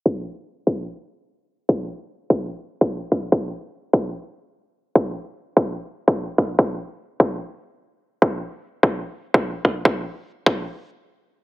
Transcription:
\new DrumStaff \with { instrumentName = "Drums" } \drummode { \time 4/4 \tempo 4 = 147 bd4 r8 bd8 r4 r4 | bd4 r8 bd8 r8. bd16 r8 bd8 | bd4 r8 bd8 r4 r4 | bd4 r8 bd8 r8. bd16 r8 bd8 |
bd4 r8 bd8 r4 r4 | bd4 r8 bd8 r8. bd16 r8 bd8 | bd4 r8 bd8 r4 r4 | }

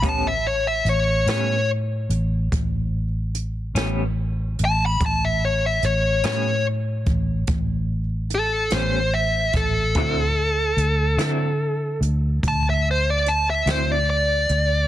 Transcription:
<<
  \new Staff \with { instrumentName = "Lead electric guitar" } { \time 12/8 \key a \mixolydian \tempo 4. = 48 a''16 e''16 cis''16 e''16 cis''8 cis''8 r2. r8 a''16 b''16 | a''16 e''16 cis''16 e''16 cis''8 cis''8 r2 a'8 c''8 e''8 a'8~ | a'2~ a'8 r8 a''16 e''16 c''16 d''16 a''16 e''16 c''16 d''16 d''4 | }
  \new Staff \with { instrumentName = "Clean electric guitar" } { \time 12/8 \key a \mixolydian <a, g b cis'>8 r4 <a, g b cis'>8 r2 r8 <a, g b cis'>8 r4 | r4. <a, g b cis'>8 r2 r8 <a, g b cis'>8 r4 | <d fis c' e'>8 r4 <d fis c' e'>8 r2 r8 <d fis c' e'>8 r4 | }
  \new Staff \with { instrumentName = "Fingered electric bass" } { \clef bass \time 12/8 \key a \mixolydian a,,4 a,,8 a,4 a,,8 a,,4. a,,4 a,,8 | a,,4 a,,8 a,4 a,,8 a,,4. a,,4 a,,8 | d,4 d,8 d4 d,8 d,4. d,4 d,8 | }
  \new DrumStaff \with { instrumentName = "Drums" } \drummode { \time 12/8 <hh bd>4 hh8 <hh sn>4 hh8 <hh bd>4 hh8 <hh sn>4 hh8 | <hh bd>4 hh8 <hh sn>4 <hh bd>8 <hh bd>4 hh8 <hh sn>4 <hh bd sn>8 | <hh bd>4 hh8 <hh sn>4 hh8 <hh bd>4 hh8 <hh sn>4 hh8 | }
>>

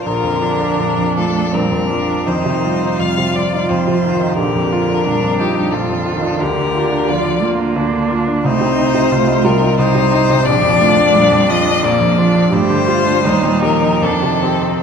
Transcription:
<<
  \new Staff \with { instrumentName = "Violin" } { \time 3/4 \key bes \major \tempo 4 = 87 bes'4. a'8 bes'4 | c''4 f''8 d''8 c''4 | bes'4. g'8 a'4 | bes'4 d''8 r4. |
c''4. bes'8 c''4 | d''4. ees''8 d''4 | c''4. bes'8 a'4 | }
  \new Staff \with { instrumentName = "Viola" } { \time 3/4 \key bes \major f'8 d'4. c'8 d'8 | ees'4 f'2 | g'8 f'8 d'8 ees'8 f'4 | g'4 f'8 f'8 d'4 |
ees'4 f'4 ees'4 | d'2 bes8 d'8 | g'8 f'8 ees'4 d'8 c'8 | }
  \new Staff \with { instrumentName = "Cello" } { \clef bass \time 3/4 \key bes \major d4 f8 a8 g8 f8 | ees8 g4. f8 ees8 | d4 g4 f8 ees8 | d8 d8 f8 bes4. |
a4 a8 g4. | f8 a8 g8 f4. | a4 g8 f8 ees4 | }
  \new Staff \with { instrumentName = "Grand piano" } { \clef bass \time 3/4 \key bes \major bes,,16 f,16 f'16 d'16 bes,,16 f,16 f'16 d'16 bes,,16 f,16 f'16 d'16 | f,16 c16 f'16 ees'16 f,16 c16 f'16 ees'16 f,16 c16 f'16 ees'16 | bes,,16 f,16 f'16 d'16 bes,,16 f,16 f'16 d'16 bes,,16 f,16 f'16 d'16 | d,16 d16 f'16 d'16 d,16 d16 f'16 d'16 d,16 d16 f'16 d'16 |
c,16 c16 ees'16 c16 c,16 ees'16 c16 ees'16 c,16 c16 ees'16 c16 | bes,,16 f,16 f'16 d'16 bes,,16 f,16 f'16 d'16 bes,,16 f,16 f'16 d'16 | g,16 d16 g'16 d'16 ees,16 bes,16 g'16 ees'16 f,16 c16 g'16 ees'16 | }
>>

